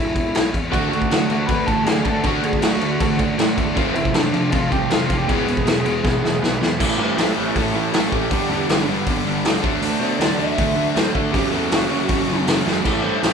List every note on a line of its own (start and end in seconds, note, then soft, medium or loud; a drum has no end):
0.00 0.14 E1 medium
0.00 0.48 E4 medium
0.00 0.52 E5 medium
0.15 0.32 E1 medium
0.15 kick medium
0.15 crash medium
0.34 0.51 B1 medium
0.34 snare loud
0.34 crash medium
0.54 0.73 E2 medium
0.54 kick medium
0.54 crash medium
0.71 0.90 D2 medium
0.71 0.89 D3 loud
0.71 1.09 D3 medium
0.71 0.90 A3 medium
0.71 1.09 A3 medium
0.71 0.90 D4 loud
0.71 1.10 D4 medium
0.71 0.88 F#4 medium
0.71 1.10 F#4 medium
0.71 0.88 F#5 medium
0.71 kick loud
0.71 crash medium
0.89 1.09 D2 medium
0.89 1.08 D3 medium
0.89 1.08 A3 medium
0.89 1.43 F#4 medium
0.89 1.49 F#5 medium
0.93 crash medium
1.02 kick medium
1.10 1.28 D2 loud
1.10 1.29 D3 medium
1.10 1.28 D3 medium
1.10 1.29 A3 medium
1.10 1.28 A3 medium
1.10 1.30 D4 medium
1.10 1.30 F#4 medium
1.10 snare loud
1.10 crash medium
1.29 1.47 D2 medium
1.29 1.46 D3 medium
1.29 1.47 D3 medium
1.29 1.48 A3 medium
1.29 1.47 A3 medium
1.29 1.47 D4 medium
1.29 1.48 F#4 medium
1.29 crash medium
1.47 1.66 D2 medium
1.47 1.85 D3 loud
1.47 1.66 D3 medium
1.47 1.86 A3 medium
1.47 1.66 A3 medium
1.47 1.85 D4 loud
1.47 1.85 F#4 loud
1.47 1.65 B4 medium
1.47 1.67 B5 medium
1.47 kick loud
1.47 crash medium
1.67 1.85 A1 medium
1.67 1.85 D3 medium
1.67 1.85 A3 medium
1.67 1.84 A4 medium
1.67 1.84 A5 medium
1.67 kick medium
1.67 crash medium
1.84 2.03 D2 medium
1.84 2.03 D3 medium
1.84 2.04 D3 medium
1.84 2.05 A3 medium
1.84 2.04 A3 medium
1.84 2.04 D4 loud
1.84 2.05 F#4 medium
1.84 2.03 G#4 medium
1.84 2.05 G#5 medium
1.84 snare loud
1.84 crash medium
2.04 2.23 D2 medium
2.04 2.22 D3 medium
2.04 2.23 D3 medium
2.04 2.23 A3 medium
2.04 2.23 D4 medium
2.04 2.23 F#4 medium
2.04 2.23 A4 medium
2.04 2.25 A5 medium
2.04 kick medium
2.04 crash medium
2.23 2.42 D2 medium
2.23 2.60 D3 loud
2.23 2.41 D3 medium
2.23 2.61 A3 loud
2.23 2.42 A3 loud
2.23 2.61 D4 loud
2.23 2.43 D4 loud
2.23 2.61 F#4 loud
2.23 2.43 F#4 medium
2.23 2.44 F#5 medium
2.23 kick loud
2.23 crash medium
2.42 2.60 D2 medium
2.42 2.60 D3 medium
2.42 2.60 A3 medium
2.42 2.62 G#4 medium
2.42 2.61 G#5 medium
2.42 crash medium
2.53 kick medium
2.61 2.96 D2 loud
2.61 2.79 D3 medium
2.61 2.80 A3 medium
2.61 2.79 A3 medium
2.61 2.80 D4 medium
2.61 3.15 F#4 medium
2.61 2.80 F#4 loud
2.61 3.19 F#5 medium
2.61 snare loud
2.61 crash medium
2.80 2.98 D3 medium
2.80 2.99 A3 medium
2.80 2.98 A3 medium
2.80 2.99 D4 medium
2.80 3.00 F#4 medium
2.80 crash medium
2.99 3.17 D2 medium
2.99 3.37 D3 loud
2.99 3.18 D3 medium
2.99 3.37 A3 loud
2.99 3.18 A3 medium
2.99 3.37 D4 loud
2.99 3.38 F#4 loud
2.99 kick loud
2.99 crash medium
3.19 3.37 D2 medium
3.19 3.36 D3 medium
3.19 3.36 A3 medium
3.19 kick medium
3.19 crash medium
3.38 3.56 A2 medium
3.38 3.56 D3 medium
3.38 3.55 D3 medium
3.38 3.57 A3 loud
3.38 3.55 A3 medium
3.38 3.57 D4 medium
3.38 3.58 F#4 medium
3.38 snare loud
3.38 crash medium
3.56 3.74 E2 medium
3.56 3.74 D3 medium
3.56 3.75 D3 medium
3.56 3.74 A3 medium
3.56 3.76 A3 medium
3.56 3.76 D4 medium
3.56 3.76 F#4 medium
3.56 kick medium
3.56 crash medium
3.74 3.94 F1 medium
3.74 3.93 F2 medium
3.74 3.93 C3 loud
3.74 3.94 F3 loud
3.74 4.13 F3 loud
3.74 4.14 A3 loud
3.74 4.14 C4 loud
3.74 4.15 F4 loud
3.74 kick loud
3.74 crash medium
3.94 4.13 F1 loud
3.94 4.12 F2 medium
3.94 4.12 C3 medium
3.94 4.13 E4 medium
3.94 4.15 E5 medium
3.94 crash medium
4.05 kick medium
4.14 4.32 F1 loud
4.14 4.32 F2 medium
4.14 4.32 C3 medium
4.14 4.32 F3 medium
4.14 4.32 A3 medium
4.14 4.33 C4 medium
4.14 4.49 D4 medium
4.14 4.33 F4 medium
4.14 4.54 D5 medium
4.14 snare loud
4.14 crash medium
4.33 4.51 F1 medium
4.33 4.51 F2 medium
4.33 4.51 C3 medium
4.33 4.50 F3 medium
4.33 4.51 A3 medium
4.33 4.51 C4 medium
4.33 4.51 F4 medium
4.33 crash medium
4.51 4.70 F1 medium
4.51 4.70 F2 medium
4.51 4.70 C3 medium
4.51 4.89 F3 loud
4.51 4.90 A3 loud
4.51 4.90 C4 loud
4.51 4.70 F4 medium
4.51 4.90 F4 loud
4.51 4.71 F5 loud
4.51 kick loud
4.51 crash medium
4.71 4.89 C2 medium
4.71 4.88 F2 medium
4.71 4.89 C3 medium
4.71 4.89 G4 medium
4.71 4.93 G5 loud
4.71 kick medium
4.71 crash medium
4.90 5.07 F1 medium
4.90 5.08 F2 medium
4.90 5.08 C3 medium
4.90 5.08 F3 medium
4.90 5.09 A3 medium
4.90 5.09 C4 medium
4.90 5.09 F4 loud
4.90 5.15 F4 medium
4.90 5.17 F5 loud
4.90 snare loud
4.90 crash medium
5.09 5.26 F1 medium
5.09 5.26 F2 medium
5.09 5.26 C3 medium
5.09 5.27 F3 medium
5.09 5.27 A3 medium
5.09 5.28 C4 medium
5.09 5.27 F4 medium
5.09 kick medium
5.09 crash medium
5.18 5.28 G4 medium
5.18 5.32 G5 loud
5.28 5.46 E1 medium
5.28 5.46 E2 medium
5.28 5.47 B2 loud
5.28 5.64 E3 medium
5.28 5.47 E3 loud
5.28 5.65 G#3 loud
5.28 5.65 B3 loud
5.28 5.65 E4 loud
5.28 6.38 G#4 medium
5.28 6.43 G#5 medium
5.28 kick loud
5.28 crash medium
5.47 5.64 E1 medium
5.47 5.64 E2 medium
5.47 5.64 B2 medium
5.47 crash medium
5.57 kick medium
5.65 6.00 E1 loud
5.65 5.83 E2 medium
5.65 5.83 B2 medium
5.65 5.84 E3 medium
5.65 5.84 G#3 medium
5.65 5.85 B3 medium
5.65 5.85 E4 medium
5.65 snare loud
5.65 crash medium
5.85 6.02 E2 medium
5.85 6.02 B2 medium
5.85 6.03 E3 medium
5.85 6.03 G#3 medium
5.85 6.03 B3 medium
5.85 6.04 E4 medium
5.85 crash medium
6.04 6.21 E1 medium
6.04 6.21 E2 medium
6.04 6.21 B2 medium
6.04 6.40 E3 medium
6.04 6.41 G#3 medium
6.04 6.41 B3 loud
6.04 6.42 E4 loud
6.04 kick loud
6.04 snare medium
6.23 6.40 E1 medium
6.23 6.40 E2 medium
6.23 6.40 B2 medium
6.23 snare medium
6.41 6.59 B1 medium
6.41 6.59 E2 medium
6.41 6.59 B2 medium
6.41 6.59 E3 medium
6.41 6.59 G#3 medium
6.41 6.60 B3 medium
6.41 6.60 E4 medium
6.41 snare medium
6.60 6.82 E2 medium
6.60 6.78 E2 medium
6.60 6.78 B2 medium
6.60 6.78 E3 medium
6.60 6.78 G#3 medium
6.60 6.78 B3 medium
6.60 6.78 E4 medium
6.60 snare medium
6.80 6.94 A1 medium
6.80 6.98 A2 medium
6.80 8.30 A2 medium
6.80 8.30 E3 medium
6.80 6.98 E3 medium
6.80 6.98 A3 loud
6.80 8.30 A3 medium
6.80 8.31 C#4 medium
6.80 8.31 E4 medium
6.80 kick loud
6.80 crash loud
6.98 7.12 G2 medium
6.98 7.17 A2 medium
6.98 7.18 E3 medium
6.98 7.18 A3 medium
6.98 7.16 G4 medium
6.98 7.17 C5 medium
7.17 7.31 A1 loud
7.17 7.36 A2 medium
7.17 7.36 E3 medium
7.17 7.37 A3 medium
7.17 7.35 G4 medium
7.17 7.36 C5 medium
7.17 snare loud
7.17 open hi-hat medium
7.36 7.51 A1 medium
7.36 7.55 A2 medium
7.36 7.56 E3 medium
7.36 7.57 A3 medium
7.36 7.54 G4 medium
7.36 7.55 C5 medium
7.56 7.70 A1 medium
7.56 7.74 A2 medium
7.56 7.75 E3 loud
7.56 7.76 A3 loud
7.56 7.74 E4 medium
7.56 7.74 A4 medium
7.56 kick loud
7.56 open hi-hat medium
7.74 7.88 A1 medium
7.74 7.93 A2 medium
7.74 7.94 E3 loud
7.74 7.94 A3 medium
7.74 7.92 E4 medium
7.74 7.93 A4 medium
7.93 8.08 A1 medium
7.93 8.11 A2 medium
7.93 8.12 E3 loud
7.93 8.12 A3 loud
7.93 8.11 E4 medium
7.93 8.12 A4 medium
7.93 snare loud
7.93 open hi-hat medium
8.12 8.26 A1 medium
8.12 8.30 A2 medium
8.12 8.30 E3 medium
8.12 8.30 A3 medium
8.12 8.85 G4 loud
8.12 kick medium
8.31 8.45 G1 medium
8.31 8.48 G2 medium
8.31 9.62 G2 medium
8.31 9.61 D3 medium
8.31 8.49 D3 loud
8.31 9.63 G3 loud
8.31 8.50 G3 loud
8.31 9.63 B3 medium
8.31 9.63 D4 loud
8.31 kick loud
8.31 open hi-hat medium
8.49 8.64 E2 medium
8.49 8.67 G2 medium
8.49 8.68 D3 medium
8.49 8.69 G3 medium
8.68 8.83 G1 loud
8.68 8.86 G2 medium
8.68 8.87 D3 medium
8.68 8.87 G3 medium
8.68 snare loud
8.68 open hi-hat medium
8.87 9.01 G1 medium
8.87 9.05 G2 medium
8.87 9.06 D3 medium
8.87 9.06 G3 medium
9.06 9.21 G1 medium
9.06 9.24 G2 medium
9.06 9.25 D3 loud
9.06 9.26 G3 loud
9.06 kick loud
9.06 open hi-hat medium
9.25 9.39 G1 medium
9.25 9.43 G2 medium
9.25 9.44 D3 medium
9.25 9.44 G3 medium
9.43 9.58 C#2 medium
9.43 9.62 G2 loud
9.43 9.61 D3 loud
9.43 9.62 G3 loud
9.43 snare loud
9.43 open hi-hat medium
9.62 9.78 D2 medium
9.62 9.80 D3 medium
9.62 11.13 D3 medium
9.62 11.13 F#3 medium
9.62 9.81 A3 loud
9.62 11.34 A3 medium
9.62 9.81 D4 loud
9.62 11.14 D4 medium
9.62 kick loud
9.81 9.95 D2 medium
9.81 9.99 D3 medium
9.81 10.00 A3 loud
9.81 10.00 D4 loud
9.81 open hi-hat medium
10.00 10.14 B2 medium
10.00 10.18 D3 medium
10.00 10.20 A3 medium
10.00 10.19 D4 loud
10.00 10.19 C5 loud
10.19 10.33 D2 loud
10.19 10.36 D3 medium
10.19 10.38 A3 medium
10.19 10.38 D4 loud
10.19 10.38 D5 medium
10.19 snare loud
10.19 open hi-hat medium
10.37 10.52 D2 medium
10.37 10.55 D3 medium
10.37 10.57 A3 medium
10.37 10.57 D4 medium
10.37 10.95 E5 loud
10.57 10.72 D2 medium
10.57 10.74 D3 loud
10.57 10.76 A3 loud
10.57 10.76 D4 loud
10.57 kick loud
10.57 open hi-hat medium
10.76 10.90 D2 medium
10.76 10.94 D3 medium
10.76 10.95 A3 medium
10.76 10.96 D4 medium
10.95 11.10 D2 loud
10.95 11.13 D3 loud
10.95 11.14 A3 loud
10.95 11.14 D4 loud
10.95 11.15 C5 loud
10.95 snare loud
10.95 open hi-hat medium
11.14 11.29 D2 loud
11.14 11.32 D3 medium
11.14 11.33 A3 medium
11.14 11.33 D4 loud
11.14 11.32 A4 medium
11.14 kick medium
11.32 11.48 F#1 medium
11.32 11.50 F#2 loud
11.32 12.83 F#2 medium
11.32 11.51 C#3 loud
11.32 12.84 C#3 medium
11.32 11.51 F#3 loud
11.32 12.84 F#3 medium
11.32 12.84 A3 loud
11.32 12.84 C#4 loud
11.32 11.51 G4 medium
11.32 kick loud
11.32 open hi-hat medium
11.51 11.67 E2 medium
11.51 11.70 F#2 medium
11.51 11.71 C#3 medium
11.51 11.72 F#3 medium
11.51 11.70 A4 loud
11.70 11.86 F#1 loud
11.70 11.90 F#2 medium
11.70 11.90 C#3 medium
11.70 11.91 F#3 medium
11.70 12.44 F#4 loud
11.70 snare loud
11.70 open hi-hat medium
11.90 12.04 F#1 medium
11.90 12.09 F#2 medium
11.90 12.10 C#3 medium
11.90 12.10 F#3 medium
12.09 12.24 F#1 medium
12.09 12.28 F#2 loud
12.09 12.29 C#3 loud
12.09 12.29 F#3 loud
12.09 kick loud
12.09 open hi-hat medium
12.28 12.42 F#1 medium
12.28 12.45 F#2 medium
12.28 12.46 C#3 medium
12.28 12.47 F#3 medium
12.47 12.61 F#1 medium
12.47 12.64 F#2 loud
12.47 12.65 C#3 loud
12.47 12.65 F#3 loud
12.47 snare loud
12.47 open hi-hat medium
12.65 12.80 F#1 medium
12.65 12.83 F#2 medium
12.65 12.84 C#3 medium
12.65 12.84 F#3 loud
12.65 snare medium
12.83 12.99 A1 medium
12.83 13.33 A2 medium
12.83 13.02 A2 medium
12.83 13.33 E3 medium
12.83 13.02 E3 loud
12.83 13.33 A3 medium
12.83 13.02 A3 loud
12.83 13.33 C#4 medium
12.83 13.33 E4 loud
12.83 kick loud
12.83 crash medium
13.03 13.18 G2 medium
13.03 13.21 A2 medium
13.03 13.22 E3 medium
13.03 13.23 A3 medium
13.03 13.20 C5 loud
13.21 13.33 A1 loud
13.21 13.33 A2 medium
13.21 13.33 E3 medium
13.21 13.33 A3 medium
13.21 13.33 C5 medium
13.21 snare loud
13.21 open hi-hat medium